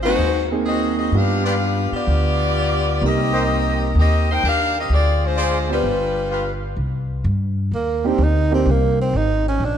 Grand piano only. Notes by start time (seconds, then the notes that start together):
0.03 A#3 C4 D#4 F#4
0.51 A#3 C4 D#4 G#4
1.14 B3 D4 F4 G4
3.02 A#3 C4 D#4 G4
5.69 B3 D4 F4 G4
8.04 A#3 C4 D4 D#4 G4
8.51 A#3 C4 D4 D#4 G4